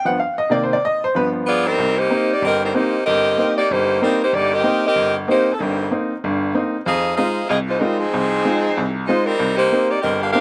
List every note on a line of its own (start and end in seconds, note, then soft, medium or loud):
0.05 0.17 G2 soft
0.05 0.17 F3 soft
0.05 0.17 B3 medium
0.05 0.18 F#5 medium
0.20 0.38 F5 medium
0.38 0.50 D#5 medium
0.50 0.73 C3 medium
0.50 0.73 D#3 medium
0.50 0.74 A#3 medium
0.50 0.61 D5 medium
0.63 0.73 C5 medium
0.73 0.83 D5 medium
0.85 1.03 D#5 medium
1.04 1.15 C5 medium
1.15 1.75 G2 medium
1.15 1.75 F3 medium
1.15 1.76 B3 medium
1.15 1.27 B4 medium
1.47 1.65 B3 loud
1.47 1.65 F4 medium
1.47 1.65 G#4 medium
1.47 1.65 D5 loud
1.66 1.98 G3 medium
1.66 1.98 C4 loud
1.66 1.97 D#4 medium
1.66 1.98 A#4 loud
1.79 2.06 C2 medium
1.98 2.30 A#3 medium
1.98 2.30 D#4 medium
1.98 2.30 G4 medium
1.98 2.30 C5 loud
2.10 2.31 A#3 medium
2.10 2.31 C4 soft
2.10 2.31 D#4 medium
2.32 2.43 A#3 medium
2.32 2.43 D#4 medium
2.32 2.43 G4 medium
2.32 2.43 D5 loud
2.42 2.69 G1 medium
2.42 2.62 C4 loud
2.42 2.61 G4 medium
2.42 2.62 A#4 loud
2.42 2.61 D#5 loud
2.64 2.74 G3 medium
2.64 2.74 C4 medium
2.64 2.73 D#4 medium
2.64 2.74 A#4 medium
2.74 3.05 A#3 medium
2.74 2.95 A#3 medium
2.74 2.95 C4 soft
2.74 3.06 D#4 medium
2.74 2.95 D#4 medium
2.74 3.04 G4 loud
2.74 3.06 C5 loud
3.05 3.34 G1 medium
3.05 3.53 C4 medium
3.05 3.53 G4 loud
3.05 3.53 A#4 loud
3.05 3.53 D#5 loud
3.38 3.58 A#3 medium
3.38 3.59 C4 soft
3.38 3.59 D#4 medium
3.58 3.69 A#3 medium
3.58 3.68 D#4 medium
3.58 3.69 G4 medium
3.58 3.69 D5 loud
3.71 3.97 G1 medium
3.71 4.02 A#3 medium
3.71 4.01 D#4 medium
3.71 4.02 G4 medium
3.71 4.02 C5 loud
4.02 4.20 G3 medium
4.02 4.22 A#3 medium
4.02 4.20 C4 medium
4.02 4.22 C4 medium
4.02 4.19 D#4 medium
4.02 4.22 D#4 medium
4.02 4.20 A#4 medium
4.23 4.33 A#3 medium
4.23 4.33 D#4 medium
4.23 4.33 G4 medium
4.23 4.33 C5 loud
4.33 4.60 G1 medium
4.33 4.53 A#3 medium
4.33 4.53 D#4 medium
4.33 4.52 G4 medium
4.33 4.53 D5 loud
4.53 4.84 C4 loud
4.53 4.84 G4 loud
4.53 4.84 A#4 loud
4.53 4.85 D#5 loud
4.64 4.84 A#3 medium
4.64 4.85 C4 soft
4.64 4.85 D#4 medium
4.86 5.15 C4 medium
4.86 5.15 G4 medium
4.86 5.15 A#4 medium
4.86 5.14 D#5 loud
4.96 5.23 G1 medium
5.28 5.48 A#3 medium
5.28 5.53 A#3 medium
5.28 5.48 C4 medium
5.28 5.48 D#4 medium
5.28 5.53 D#4 medium
5.28 5.53 G4 medium
5.28 5.53 C5 loud
5.53 5.59 A4 medium
5.60 5.87 G1 medium
5.60 5.87 G2 medium
5.60 5.92 G3 medium
5.60 5.92 C4 medium
5.60 5.91 D#4 medium
5.60 5.91 A#4 medium
5.91 6.12 A#3 soft
5.91 6.12 C4 soft
5.91 6.12 D#4 medium
6.24 6.51 G1 medium
6.24 6.51 G2 medium
6.54 6.75 A#3 medium
6.54 6.75 C4 medium
6.54 6.75 D#4 medium
6.86 7.13 F2 medium
6.86 7.15 D#4 medium
6.86 7.16 G#4 medium
6.86 7.16 C5 medium
6.86 7.16 F5 medium
7.17 7.39 G#3 soft
7.17 7.47 D#4 medium
7.17 7.39 D#4 soft
7.17 7.39 F4 medium
7.17 7.47 G#4 medium
7.17 7.47 C5 medium
7.17 7.47 F5 medium
7.49 7.77 C2 medium
7.49 7.58 C4 medium
7.49 7.58 F4 medium
7.49 7.58 G#4 medium
7.49 7.58 D#5 loud
7.68 7.80 G#3 medium
7.68 7.79 D#4 medium
7.68 7.80 F4 medium
7.68 7.80 C5 medium
7.80 8.01 G3 medium
7.80 8.02 G#3 soft
7.80 7.98 C4 medium
7.80 7.98 D#4 medium
7.80 8.02 D#4 soft
7.80 8.02 F4 medium
7.80 8.00 A#4 medium
7.99 8.95 F3 medium
7.99 8.95 C4 medium
7.99 8.95 D#4 medium
7.99 8.95 G#4 loud
8.14 8.40 C2 medium
8.45 8.65 G#3 soft
8.45 8.66 D#4 soft
8.45 8.66 F4 medium
8.78 9.04 C2 medium
9.07 9.26 G#3 medium
9.07 9.29 G#3 medium
9.07 9.25 D#4 medium
9.07 9.30 D#4 soft
9.07 9.25 F4 medium
9.07 9.30 F4 medium
9.07 9.25 C5 loud
9.26 9.59 G3 medium
9.26 9.58 C4 medium
9.26 9.55 D#4 medium
9.26 9.58 A#4 loud
9.40 9.67 C2 medium
9.56 9.87 A#3 medium
9.56 9.87 D#4 medium
9.56 9.87 G4 medium
9.56 9.87 C5 loud
9.72 9.92 A#3 medium
9.72 9.93 C4 soft
9.72 9.93 D#4 medium
9.90 10.03 A#3 medium
9.90 10.03 D#4 medium
9.90 10.00 G4 medium
9.90 10.03 D5 loud
10.01 10.31 G1 medium
10.01 10.20 C4 medium
10.01 10.20 G4 medium
10.01 10.21 A#4 medium
10.01 10.20 D#5 medium
10.21 10.31 D4 medium
10.21 10.31 G4 medium
10.21 10.32 A#4 medium
10.21 10.32 F5 medium
10.32 10.40 A#3 medium
10.32 10.40 C4 medium
10.32 10.40 D4 medium
10.32 10.40 D#4 medium
10.32 10.40 G4 medium
10.32 10.40 A#4 loud
10.32 10.40 F5 loud